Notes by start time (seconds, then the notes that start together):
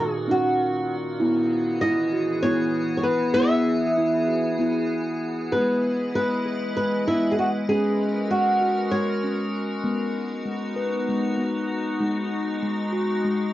Already playing: A#2 D#3 D#4 F#4
0.00 G#4
0.27 C#4 D#4 F#4
1.19 E3 B3 E4 G#4
1.81 E4 D#5
2.13 F#4
2.43 B3 E4 C#5
2.97 C#5
3.03 B4
3.34 B3 E4 E5
3.98 E4
4.28 F#4
4.59 B3 E4
5.51 G#3 B3 E4 B4
6.15 G#3 B4
6.45 G#4
6.77 G#3 B4
7.08 E4
7.32 G#4
7.39 F#4
7.65 G#3 F#4 A#4
7.69 C#4 G#4
8.31 G#3 F#4
8.61 F#4
8.91 G#3 C#5
9.23 C#4
9.83 G#3 B3 D#4 F#4
10.45 G#3
10.76 B4
11.09 G#3
11.38 B3
11.99 G#3 D#4
12.63 G#3
12.93 F#4
13.24 G#3